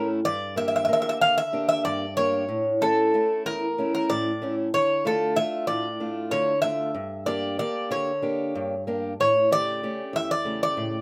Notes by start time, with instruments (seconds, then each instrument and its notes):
Already playing: steel-string acoustic guitar A2 A3 C#4 E4
0.25 steel-string acoustic guitar G2, bouzouki D5
0.56 steel-string acoustic guitar A#3 D4 G4, bouzouki E5
0.68 bouzouki E5
0.76 bouzouki E5
0.85 steel-string acoustic guitar A#3, bouzouki E5
0.89 steel-string acoustic guitar D4 G4
0.93 bouzouki E5
1.02 bouzouki E5
1.09 bouzouki E5
1.21 steel-string acoustic guitar D3, bouzouki F5
1.38 bouzouki E5
1.53 steel-string acoustic guitar A#3 D4 G4
1.69 bouzouki E5
1.85 steel-string acoustic guitar G2, bouzouki D5
2.17 steel-string acoustic guitar A#3 D4 G4, bouzouki C#5
2.49 steel-string acoustic guitar A2
2.81 steel-string acoustic guitar A3 C#4 E4, bouzouki A4
3.14 steel-string acoustic guitar A3 C#4 E4
3.46 steel-string acoustic guitar E2, bouzouki A#4
3.78 steel-string acoustic guitar A3 C#4 E4
3.95 bouzouki A#4
4.10 steel-string acoustic guitar A2, bouzouki D5
4.42 steel-string acoustic guitar A3 C#4 E4
4.74 steel-string acoustic guitar D3, bouzouki C#5
5.05 steel-string acoustic guitar A3 D4 F4, bouzouki A4
5.36 steel-string acoustic guitar A3 D4 F4, bouzouki E5
5.67 steel-string acoustic guitar A2, bouzouki D5
6.00 steel-string acoustic guitar A3 D4 F4
6.31 steel-string acoustic guitar D3, bouzouki C#5
6.62 steel-string acoustic guitar A3 D4 F4, bouzouki E5
6.94 steel-string acoustic guitar G2
7.26 steel-string acoustic guitar A#3 D4 G4, bouzouki D5
7.59 steel-string acoustic guitar A#3 D4 G4, bouzouki D5
7.91 steel-string acoustic guitar D3, bouzouki C#5
8.22 steel-string acoustic guitar A#3 D4 G4
8.55 steel-string acoustic guitar G2
8.87 steel-string acoustic guitar A#3 D4 G4
9.20 steel-string acoustic guitar A2, bouzouki C#5
9.51 steel-string acoustic guitar C#3 A3 G4, bouzouki D5
9.83 steel-string acoustic guitar A3 C#4 G4
10.13 steel-string acoustic guitar E2, bouzouki E5
10.31 bouzouki D5
10.45 steel-string acoustic guitar C#3 A3 G4
10.63 bouzouki D5
10.77 steel-string acoustic guitar A2